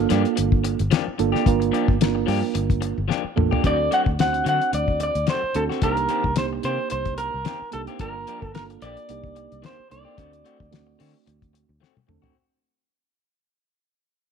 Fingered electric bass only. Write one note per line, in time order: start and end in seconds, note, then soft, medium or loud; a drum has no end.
0.11 0.24 G2 medium
0.38 0.75 G1 medium
0.80 0.91 G1 medium
1.08 muted fingered electric bass stroke soft
1.20 1.33 G1 medium
1.46 1.70 G1 medium
1.89 2.23 G1 medium
2.28 2.41 G2 medium
2.55 2.92 G1 medium
2.98 3.08 G1 medium
3.24 muted fingered electric bass stroke soft
3.37 3.50 A1 medium
3.64 3.88 D2 medium
4.07 4.41 D2 medium
4.46 4.59 D3 medium
4.73 5.10 D2 medium
5.15 5.26 D2 medium
5.43 muted fingered electric bass stroke soft
5.55 5.68 D2 medium
5.82 6.06 C2 medium
6.24 6.59 C2 medium
6.64 6.77 C3 medium
6.92 7.29 C2 medium
7.34 7.44 C2 medium
7.62 muted fingered electric bass stroke soft
7.74 7.87 C2 medium
8.00 8.24 G1 medium
8.42 8.77 G1 medium
8.82 8.95 A#1 medium
9.09 9.46 C2 medium
9.52 9.63 C2 medium
9.79 muted fingered electric bass stroke soft
9.92 10.05 C2 medium
10.18 10.42 D2 medium
10.60 10.95 D2 medium
11.01 11.13 D3 medium
11.27 11.64 D2 medium
11.69 11.80 D2 medium
11.97 muted fingered electric bass stroke soft
12.09 12.22 D2 medium